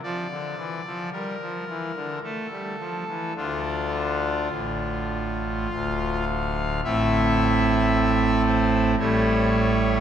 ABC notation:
X:1
M:3/4
L:1/16
Q:1/4=54
K:Dm
V:1 name="Pipe organ"
d4 B4 A4 | F8 f4 | [K:Am] e6 c2 ^c4 |]
V:2 name="Pipe organ" clef=bass
F, D, E, F, G, F, E, D, A, G, F, E, | [D,,D,D]4 [A,,,A,,]4 [D,,,D,,]4 | [K:Am] [A,,,A,,A,CE]8 [A,,,A,,G,A,E]4 |]